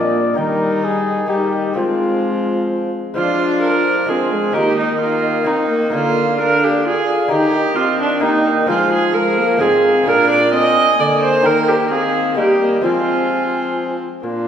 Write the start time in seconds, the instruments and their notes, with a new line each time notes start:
Already playing: bassoon A#2, lute A#2 A#3 D4 F4, viola F3 A#3, cornet D5
0.34 lute D#3 A#3 D#4 G5
0.38 bassoon D#3, viola G3 D#4, cornet A#4
0.84 cornet G#4
1.26 lute A#3 D#4 G4, viola D#4, cornet G4
1.30 viola G3
1.73 bassoon F3, lute G#3 C4 F4, viola G#3 C4, cornet F4
1.78 lute F3
3.14 bassoon F3, lute F3 G#3 C4 F4, viola D4 F4, cornet D5
3.40 cornet C5
3.62 viola A#4
4.06 lute G#3 C4 F4, viola G#4, cornet C5
4.10 viola C4
4.33 viola G#3
4.52 lute D#3 A#3 D#4 A#4, viola G4
4.56 bassoon D#3, viola A#3, cornet D#5
4.77 viola D#4
5.00 viola A#3 F4
5.44 lute A#3 D#4 A#4, viola C4 D#4, cornet D#5
5.69 viola A#3
5.90 lute A#3 F4 A#4, viola A#3, cornet F5
5.94 lute D3, bassoon D3, viola F4
6.39 viola D4 A#4
6.64 viola G4
6.85 viola F4 G#4, cornet F5
7.28 bassoon D#3, lute D#3 A#3 D#4 G4, viola D#4 G4
7.33 cornet G5
7.56 cornet D#5
7.76 viola C4 F4
8.00 viola D4
8.20 lute A#3 D#4 G4, viola A#3 D#4
8.24 cornet G5
8.66 bassoon F3, lute F3 G#3 C4 F4, viola G#3 F4, cornet G#5
8.93 viola G#4
9.14 viola G#3 A#4, cornet F5
9.38 viola A#3
9.57 bassoon G#2, lute G#3 C4 F4, viola G#4
9.61 lute G#2, viola C4, cornet F5
10.03 bassoon A#2, lute A#2 A#3 F4, viola D4
10.08 viola A#4
10.30 viola D5
10.52 viola C4 D#5, cornet G#5
10.99 lute D3, bassoon D3, viola A#3 D5
11.22 viola C5
11.41 lute D#3 A#3 D#4 G5, cornet G5
11.46 bassoon D#3, viola A#4
11.68 viola G4
11.90 viola C4 G#4, cornet F5
12.34 bassoon G3, lute G3 A#3 D#4 G4, viola A#3 G4, cornet D#5
12.61 viola A#3
12.81 bassoon F3, lute F3 G#3 C4 F4, viola C4 F4, cornet G#5
14.23 lute A#2, bassoon A#2, viola A#3 D4, cornet F4